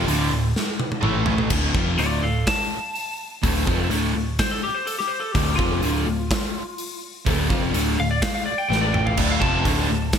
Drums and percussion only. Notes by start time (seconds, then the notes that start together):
0.08 open hi-hat
0.56 snare
0.80 high tom
0.92 high tom
1.03 mid tom
1.26 floor tom
1.38 floor tom
1.50 kick, crash
1.75 kick
1.98 open hi-hat
2.47 kick, snare, open hi-hat
2.95 open hi-hat
3.43 kick, open hi-hat
3.67 kick
3.91 open hi-hat
4.39 kick, snare, open hi-hat
4.87 open hi-hat
5.00 snare
5.35 kick, open hi-hat
5.59 kick
5.83 open hi-hat
6.31 kick, snare, open hi-hat
6.78 open hi-hat
7.26 kick, open hi-hat
7.50 kick
7.74 open hi-hat
8.22 kick, snare, open hi-hat
8.72 snare
8.94 mid tom
9.07 floor tom
9.17 kick, crash
9.42 kick
9.65 kick, open hi-hat
10.13 kick, snare, open hi-hat